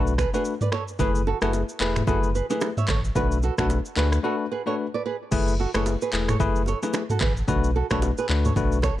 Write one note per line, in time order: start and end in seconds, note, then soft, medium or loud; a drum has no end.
0.00 0.26 B1 loud
0.00 0.12 A3 medium
0.00 0.13 D4 medium
0.00 0.13 F#4 medium
0.00 0.13 B4 medium
0.07 shaker soft
0.18 0.29 G#4 medium
0.18 0.28 B4 medium
0.18 finger snap medium
0.18 kick medium
0.18 cross-stick medium
0.18 shaker medium
0.34 0.53 A3 medium
0.34 0.53 D4 medium
0.34 0.53 F#4 medium
0.34 0.42 G#4 medium
0.34 0.53 B4 medium
0.34 0.41 B4 medium
0.34 shaker medium
0.45 shaker medium
0.61 0.69 B4 medium
0.61 0.68 D5 medium
0.61 mid tom loud
0.61 shaker medium
0.72 0.83 A4 medium
0.72 0.83 C#5 medium
0.72 finger snap medium
0.72 cross-stick loud
0.88 shaker medium
0.99 1.34 F#1 loud
0.99 1.21 A3 medium
0.99 1.21 E4 medium
0.99 1.21 G#4 medium
0.99 1.10 G#4 medium
0.99 1.21 B4 loud
0.99 1.10 B4 medium
0.99 kick loud
0.99 low conga medium
0.99 shaker medium
1.15 shaker medium
1.27 1.37 F#4 medium
1.27 1.37 A4 medium
1.27 low bongo medium
1.42 1.64 F#1 loud
1.42 1.61 A3 medium
1.42 1.61 E4 medium
1.42 1.50 F#4 medium
1.42 1.61 G#4 medium
1.42 1.50 A4 medium
1.42 1.61 B4 medium
1.42 finger snap medium
1.42 cross-stick loud
1.42 shaker medium
1.53 high bongo medium
1.53 shaker medium
1.69 shaker medium
1.80 2.02 E1 loud
1.80 2.02 A3 medium
1.80 2.02 E4 medium
1.80 2.02 G#4 medium
1.80 1.91 G#4 medium
1.80 2.02 B4 medium
1.80 1.91 B4 medium
1.80 clap loud
1.96 finger snap medium
1.96 cross-stick medium
1.96 mid tom medium
1.96 high bongo medium
1.96 shaker medium
2.07 2.42 F#1 loud
2.07 2.29 A3 medium
2.07 2.29 E4 medium
2.07 2.18 F#4 medium
2.07 2.29 G#4 medium
2.07 2.18 A4 medium
2.07 2.29 B4 loud
2.07 kick loud
2.07 low conga medium
2.07 shaker medium
2.23 shaker soft
2.35 2.45 G#4 medium
2.35 2.45 B4 medium
2.35 shaker medium
2.50 2.69 A3 medium
2.50 2.69 E4 medium
2.50 2.70 G#4 medium
2.50 2.58 G#4 medium
2.50 2.70 B4 medium
2.50 2.58 B4 medium
2.50 low bongo medium
2.50 shaker medium
2.61 finger snap medium
2.61 cross-stick medium
2.61 high bongo medium
2.61 low bongo medium
2.61 shaker medium
2.77 2.85 C#5 medium
2.77 2.85 E5 medium
2.77 mid tom medium
2.77 shaker medium
2.88 3.11 A1 loud
2.88 2.99 A4 medium
2.88 2.99 C#5 medium
2.88 finger snap medium
2.88 kick loud
2.88 cross-stick loud
2.88 clap loud
2.88 low conga medium
3.04 shaker medium
3.15 3.51 B1 loud
3.15 3.37 A3 medium
3.15 3.37 D4 medium
3.15 3.37 F#4 medium
3.15 3.26 F#4 medium
3.15 3.37 B4 loud
3.15 3.26 B4 medium
3.15 kick loud
3.15 low conga medium
3.15 shaker medium
3.32 shaker medium
3.43 3.53 F#4 medium
3.43 3.53 A4 medium
3.43 low bongo medium
3.43 shaker medium
3.58 3.80 B1 loud
3.58 3.77 A3 medium
3.58 3.78 D4 medium
3.58 3.78 F#4 medium
3.58 3.66 F#4 medium
3.58 3.66 A4 medium
3.58 3.78 B4 medium
3.58 finger snap medium
3.58 kick medium
3.58 cross-stick loud
3.58 shaker medium
3.70 high bongo medium
3.70 shaker medium
3.85 shaker medium
3.96 4.19 D2 loud
3.96 4.18 A3 medium
3.96 4.18 D4 medium
3.96 4.18 F#4 medium
3.96 4.07 G#4 medium
3.96 4.18 B4 medium
3.96 4.07 B4 medium
3.96 clap loud
3.96 shaker medium
4.12 finger snap medium
4.12 cross-stick medium
4.12 shaker medium
4.23 4.45 A3 medium
4.23 4.45 D4 medium
4.23 4.45 F#4 medium
4.23 4.35 F#4 medium
4.23 4.34 A4 medium
4.23 4.45 B4 loud
4.52 4.62 G#4 medium
4.52 4.61 B4 medium
4.66 4.86 A3 medium
4.66 4.86 D4 medium
4.66 4.86 F#4 medium
4.66 4.75 A4 medium
4.66 4.86 B4 medium
4.66 4.74 C#5 medium
4.94 5.02 B4 medium
4.94 5.01 D5 medium
5.06 5.16 G#4 medium
5.06 5.15 B4 medium
5.32 5.67 F#1 loud
5.32 5.53 A3 medium
5.32 5.53 E4 medium
5.32 5.53 G#4 medium
5.32 5.53 B4 loud
5.32 kick loud
5.32 crash loud
5.32 low conga medium
5.32 shaker medium
5.48 shaker medium
5.60 5.70 F#4 medium
5.60 5.69 A4 medium
5.74 5.97 F#1 loud
5.74 5.94 A3 medium
5.74 5.94 E4 medium
5.74 5.94 G#4 medium
5.74 5.83 A4 medium
5.74 5.94 B4 medium
5.74 5.82 C#5 medium
5.74 finger snap medium
5.74 cross-stick loud
5.74 shaker medium
5.86 high bongo medium
5.86 shaker medium
6.02 6.10 G#4 medium
6.02 6.09 B4 medium
6.02 shaker medium
6.13 6.35 E1 medium
6.13 6.34 A3 medium
6.13 6.34 E4 medium
6.13 6.34 G#4 medium
6.13 6.34 B4 medium
6.13 clap loud
6.28 6.37 A4 medium
6.28 6.36 C#5 medium
6.28 finger snap medium
6.28 cross-stick medium
6.28 mid tom medium
6.28 shaker medium
6.40 6.75 F#1 loud
6.40 6.61 A3 medium
6.40 6.61 E4 medium
6.40 6.61 G#4 medium
6.40 6.61 B4 loud
6.40 kick loud
6.40 low conga medium
6.40 shaker medium
6.56 shaker medium
6.66 6.78 A4 medium
6.66 6.77 C#5 medium
6.66 high bongo medium
6.66 shaker medium
6.82 7.02 A3 medium
6.82 7.02 E4 medium
6.82 7.02 G#4 medium
6.82 7.02 B4 medium
6.82 low bongo medium
6.82 shaker medium
6.93 finger snap medium
6.93 cross-stick medium
6.93 high bongo medium
6.93 low bongo medium
6.93 shaker medium
7.10 7.18 F#4 medium
7.10 7.17 A4 medium
7.10 mid tom medium
7.10 shaker medium
7.21 7.43 A1 medium
7.21 7.32 G#4 medium
7.21 7.31 B4 medium
7.21 finger snap medium
7.21 kick loud
7.21 cross-stick medium
7.21 clap loud
7.21 low conga medium
7.37 shaker medium
7.48 7.83 B1 loud
7.48 7.69 A3 medium
7.48 7.69 D4 medium
7.48 7.70 F#4 medium
7.48 7.70 B4 loud
7.48 kick loud
7.48 low conga medium
7.48 shaker medium
7.64 shaker medium
7.76 7.86 F#4 medium
7.76 7.85 A4 medium
7.90 8.13 B1 loud
7.90 8.10 A3 medium
7.90 8.10 D4 medium
7.90 8.10 F#4 medium
7.90 7.99 A4 medium
7.90 8.10 B4 medium
7.90 7.98 C#5 medium
7.90 finger snap medium
7.90 kick medium
7.90 cross-stick loud
7.90 shaker medium
8.02 high bongo medium
8.02 shaker medium
8.18 8.26 G#4 medium
8.18 8.25 B4 medium
8.18 shaker medium
8.29 8.51 D2 loud
8.29 8.50 A3 medium
8.29 8.51 D4 medium
8.29 8.51 F#4 medium
8.29 8.51 B4 medium
8.29 clap loud
8.45 8.53 A4 medium
8.45 8.52 C#5 medium
8.45 mid tom medium
8.45 shaker medium
8.56 8.91 B1 loud
8.56 8.77 A3 medium
8.56 8.78 D4 medium
8.56 8.78 F#4 medium
8.56 8.78 B4 loud
8.56 kick loud
8.56 low conga medium
8.56 shaker medium
8.72 shaker soft
8.82 8.94 A4 medium
8.82 8.93 C#5 medium
8.82 finger snap medium
8.82 kick medium
8.82 cross-stick loud
8.82 high bongo medium
8.82 shaker medium